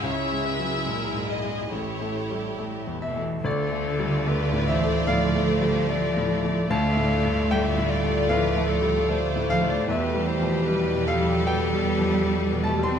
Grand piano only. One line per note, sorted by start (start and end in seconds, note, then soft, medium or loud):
0.03 0.83 C#2 soft
0.32 0.75 G#3 soft
0.59 0.86 F#3 soft
0.85 1.31 G#3 soft
1.13 1.60 G#2 soft
1.44 1.73 G#3 soft
1.72 3.41 A1 soft
2.01 2.48 A3 soft
2.31 2.59 G3 soft
2.59 3.05 A3 soft
2.87 3.34 E2 soft
3.02 3.42 E5 medium
3.16 3.45 A3 soft
3.44 5.04 D2 medium
3.44 4.64 D5 medium
3.71 4.16 A3 soft
3.99 4.27 G3 soft
4.26 4.70 A3 soft
4.53 4.96 A2 soft
4.68 5.05 E5 medium
4.81 5.24 A3 soft
5.07 5.51 A2 soft
5.07 6.65 F5 medium
5.36 5.78 A3 soft
5.61 5.89 G3 soft
5.89 6.32 A3 soft
6.17 6.59 A2 soft
6.44 6.86 A3 soft
6.70 8.25 D2 medium
6.70 7.46 A5 medium
6.97 7.40 A2 soft
7.25 7.51 G2 soft
7.51 7.93 A3 soft
7.51 8.25 G5 medium
7.77 8.19 A2 soft
8.04 8.45 A3 soft
8.29 8.72 A2 soft
8.29 9.05 F5 medium
8.57 8.99 A3 soft
8.81 9.08 G3 soft
9.09 9.51 A3 soft
9.36 9.78 A2 soft
9.50 9.68 F5 medium
9.62 9.88 A3 soft
9.70 9.88 D5 medium
9.88 11.42 E2 medium
9.88 11.04 E5 medium
10.14 10.57 G3 soft
10.41 10.67 F3 soft
10.68 11.10 G3 soft
10.94 11.36 B2 soft
11.08 11.44 F5 medium
11.20 11.62 G3 soft
11.47 11.88 B2 soft
11.47 12.61 G5 medium
11.73 12.15 G3 soft
11.99 12.25 F3 soft
12.26 12.68 G3 soft
12.52 12.93 B2 soft
12.64 12.82 A5 medium
12.79 12.99 G3 soft
12.83 12.99 C6 medium